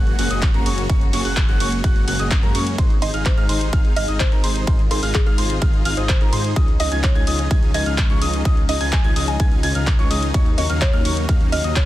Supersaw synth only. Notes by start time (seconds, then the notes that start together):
Already playing: A#3 C#4 F#4 G#4 F#5
0.19 A#3 C#4 F#4 G#4 F#5
0.30 A#3 C#4 F#4 G#4 D#5
0.54 A#3 C#4 F#4 G#4 A#4
0.66 A#3 C#4 F#4 G#4 C#5
0.90 A#3 C#4 F#4 G#4 C#5
1.13 A#3 C#4 F#4 G#4 C#5
1.25 A#3 C#4 F#4 G#4 F#5
1.49 A#3 C#4 F#4 G#4 F#5
1.60 A#3 C#4 F#4 G#4 C#5
1.84 A#3 C#4 F#4 G#4 F#5
2.08 A#3 C#4 F#4 G#4 F#5
2.19 A#3 C#4 F#4 G#4 D#5
2.43 A#3 C#4 F#4 G#4 A#4
2.55 A#3 C#4 F#4 G#4 C#5
2.78 D#4 G#4 C5
3.02 D#4 G#4 C5
3.14 D#4 G#4 F5
3.37 D#4 G#4 F5
3.49 D#4 G#4 C5
3.73 D#4 G#4 F5
3.97 D#4 G#4 F5
4.08 D#4 G#4 D#5
4.32 D#4 G#4 A#4
4.44 D#4 G#4 C5
4.68 D#4 G#4 C5
4.91 D#4 G#4 C5
5.03 D#4 G#4 F5
5.27 D#4 G#4 F5
5.38 D#4 G#4 C5
5.62 D#4 G#4 F5
5.86 D#4 G#4 F5
5.97 D#4 G#4 D#5
6.21 D#4 G#4 A#4
6.33 D#4 G#4 C5
6.56 C#4 D#4 F4 G#4 D#5
6.80 C#4 D#4 F4 G#4 D#5
6.92 C#4 D#4 F4 G#4 G#5
7.15 C#4 D#4 F4 G#4 G#5
7.27 C#4 D#4 F4 G#4 D#5
7.51 C#4 D#4 F4 G#4 G#5
7.74 C#4 D#4 F4 G#4 G#5
7.86 C#4 D#4 F4 G#4 F5
8.10 C#4 D#4 F4 G#4 C#5
8.22 C#4 D#4 F4 G#4 D#5
8.45 C#4 D#4 F4 G#4 D#5
8.69 C#4 D#4 F4 G#4 D#5
8.81 C#4 D#4 F4 G#4 G#5
9.04 C#4 D#4 F4 G#4 G#5
9.16 C#4 D#4 F4 G#4 D#5
9.40 C#4 D#4 F4 G#4 G#5
9.63 C#4 D#4 F4 G#4 G#5
9.75 C#4 D#4 F4 G#4 F5
9.99 C#4 D#4 F4 G#4 C#5
10.11 C#4 D#4 F4 G#4 D#5
10.34 A#3 C#4 D#4 F#4 C#5
10.58 A#3 C#4 D#4 F#4 C#5
10.70 A#3 C#4 D#4 F#4 F5
10.93 A#3 C#4 D#4 F#4 F5
11.05 A#3 C#4 D#4 F#4 C#5
11.29 A#3 C#4 D#4 F#4 F5
11.52 A#3 C#4 D#4 F#4 F5
11.64 A#3 C#4 D#4 F#4 D#5